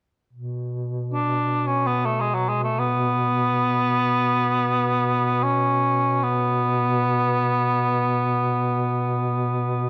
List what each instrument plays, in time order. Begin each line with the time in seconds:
0.33 duduk B2
1.13 cor anglais D4
1.67 cor anglais C#4
1.87 cor anglais B3
2.05 cor anglais A3
2.20 cor anglais G#3
2.34 cor anglais F#3
2.49 cor anglais G#3
2.63 cor anglais A3
2.79 cor anglais B3
5.43 cor anglais C#4
6.23 cor anglais B3